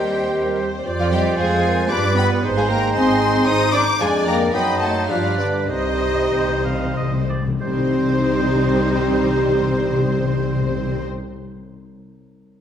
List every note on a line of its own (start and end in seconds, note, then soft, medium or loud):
0.00 0.86 D#2 medium
0.00 0.59 G3 medium
0.00 0.84 C4 medium
0.00 0.58 G4 medium
0.00 0.69 G4 medium
0.00 0.69 C5 medium
0.00 0.59 D#5 medium
0.00 0.60 G5 medium
0.09 0.34 C5 medium
0.34 0.60 A#4 medium
0.60 0.86 C5 medium
0.86 1.32 F2 medium
0.86 1.92 C4 medium
0.86 2.39 F4 medium
0.86 1.93 C5 medium
0.86 1.38 D5 medium
0.99 1.11 F3 medium
0.99 1.11 F4 medium
0.99 1.12 D5 medium
0.99 1.04 F5 medium
1.12 1.24 G3 medium
1.12 1.38 G3 medium
1.12 1.38 G4 medium
1.12 1.38 D#5 medium
1.12 1.20 G5 medium
1.38 1.84 F2 medium
1.38 1.91 G#3 medium
1.38 1.90 G#3 medium
1.38 1.89 G#4 medium
1.38 1.64 C5 medium
1.38 1.90 F5 medium
1.38 1.90 G#5 medium
1.64 1.90 A#4 medium
1.90 2.37 G2 medium
1.90 2.45 G3 medium
1.90 2.17 D4 medium
1.90 2.03 D4 medium
1.90 2.43 B4 medium
1.90 2.16 D5 medium
1.90 1.98 B5 medium
1.90 2.17 D6 loud
2.17 2.43 B3 medium
2.17 2.29 B3 medium
2.17 2.42 B4 medium
2.17 2.24 G5 medium
2.17 2.26 B5 loud
2.43 2.89 G#1 medium
2.43 3.84 G#3 medium
2.43 3.97 D#4 medium
2.43 2.94 C5 medium
2.43 3.98 C5 medium
2.56 2.61 G#3 medium
2.56 2.62 G#3 medium
2.56 2.68 G#4 medium
2.56 2.62 F5 medium
2.56 2.63 G#5 medium
2.68 2.77 A#3 medium
2.68 2.95 A#3 medium
2.68 2.94 A#4 medium
2.68 2.97 G5 loud
2.68 2.95 A#5 medium
2.94 3.41 G#1 medium
2.94 3.46 C4 medium
2.94 3.47 C4 medium
2.94 3.46 C5 medium
2.94 3.46 D#5 medium
2.94 3.47 G#5 loud
2.94 3.47 C6 medium
3.47 3.94 G#1 medium
3.47 3.73 D#4 medium
3.47 3.74 D#4 medium
3.47 3.99 C5 medium
3.47 3.74 D#5 medium
3.47 3.75 C6 medium
3.47 3.74 D#6 loud
3.73 3.82 D4 medium
3.73 3.86 D4 medium
3.73 3.81 D5 medium
3.73 4.00 A#5 medium
3.73 4.01 D6 loud
3.99 4.48 F2 medium
3.99 4.26 G#3 medium
3.99 4.09 G#3 medium
3.99 4.50 G#3 medium
3.99 4.54 D4 medium
3.99 4.07 G#4 medium
3.99 4.53 D5 loud
3.99 4.50 D5 medium
3.99 4.06 F5 medium
3.99 4.28 G#5 loud
4.25 4.53 A#3 medium
4.25 4.54 A#3 medium
4.25 4.52 A#4 medium
4.25 4.52 G5 medium
4.25 4.35 A#5 loud
4.53 5.03 F#2 medium
4.53 5.10 F#3 medium
4.53 4.81 B3 medium
4.53 4.62 B3 medium
4.53 5.11 D#4 medium
4.53 4.81 B4 medium
4.53 5.11 C5 medium
4.53 5.09 D#5 medium
4.53 4.80 G5 medium
4.53 4.81 B5 medium
4.80 5.09 A3 medium
4.80 4.94 A3 medium
4.80 5.09 A4 medium
4.80 5.11 F#5 medium
4.80 5.09 A5 medium
5.09 5.62 G2 medium
5.09 5.39 F3 medium
5.09 5.24 F3 medium
5.09 5.69 G3 medium
5.09 5.71 D4 medium
5.09 5.39 F4 medium
5.09 5.69 B4 medium
5.09 5.40 D5 medium
5.09 5.69 D5 medium
5.09 5.38 F5 medium
5.38 5.47 D3 medium
5.38 5.69 D3 medium
5.38 5.69 D4 medium
5.38 5.71 B4 medium
5.38 5.47 D5 medium
5.69 6.25 C2 medium
5.69 7.26 C3 medium
5.69 5.77 C3 soft
5.69 7.26 C3 medium
5.69 7.26 G3 medium
5.69 7.25 C4 medium
5.69 7.29 D#4 medium
5.69 7.29 G4 medium
5.69 7.26 C5 medium
5.69 6.25 C5 medium
5.69 7.26 D#5 medium
5.96 6.03 C3 soft
6.05 6.13 C3 soft
6.14 6.21 C3 soft
6.31 6.89 C2 medium
6.31 6.39 C3 medium
6.31 6.62 G5 medium
6.40 6.48 C3 medium
6.49 6.57 C3 soft
6.58 6.65 C3 medium
6.65 6.74 C3 medium
6.65 6.96 F5 medium
6.75 6.84 C3 medium
6.85 6.93 C3 medium
6.94 7.53 C2 medium
6.94 7.01 C3 medium
6.94 7.11 D#5 medium
7.02 7.10 C3 medium
7.11 7.20 C3 medium
7.21 7.28 C3 medium
7.29 7.38 C3 medium
7.29 7.44 D5 medium
7.40 7.47 C3 medium
7.48 7.56 C3 medium
7.61 11.04 C2 medium
7.61 7.68 C3 medium
7.61 11.04 G3 medium
7.61 11.04 C4 medium
7.61 11.04 D#4 medium
7.61 11.05 G4 medium
7.61 11.04 C5 medium
7.68 7.74 C3 medium
7.74 7.80 C3 medium
7.80 7.86 C3 medium
7.87 7.93 C3 medium
7.93 7.99 C3 medium
8.00 8.06 C3 medium
8.06 8.12 C3 medium
8.12 8.18 C3 medium
8.18 8.24 C3 medium
8.24 8.31 C3 medium
8.37 8.43 C3 medium
8.43 8.49 C3 medium
8.49 8.55 C3 medium
8.55 8.61 C3 medium
8.61 8.67 C3 medium
8.68 8.74 C3 medium
8.80 8.86 C3 medium
8.86 8.93 C3 medium
8.93 8.99 C3 medium
8.99 9.05 C3 medium
9.05 9.11 C3 medium
9.12 9.17 C3 medium
9.17 9.24 C3 medium
9.24 9.30 C3 medium
9.30 9.36 C3 medium
9.36 9.42 C3 medium
9.42 9.48 C3 medium
9.48 9.54 C3 medium
9.54 9.61 C3 medium
9.61 9.67 C3 medium
9.67 9.74 C3 medium
9.74 9.80 C3 medium
9.87 9.93 C3 medium
9.93 9.99 C3 medium
9.99 10.06 C3 medium
10.06 10.12 C3 medium
10.12 10.18 C3 medium
10.18 10.24 C3 medium
10.24 10.31 C3 medium
10.31 10.37 C3 medium
10.38 10.44 C3 medium
10.44 10.50 C3 medium
10.50 10.56 C3 medium
10.56 10.62 C3 medium
10.63 10.69 C3 medium
10.70 10.76 C3 medium
10.76 10.82 C3 medium
10.83 10.89 C3 medium
10.89 10.95 C3 medium
10.95 11.00 C3 medium
11.00 11.07 C3 medium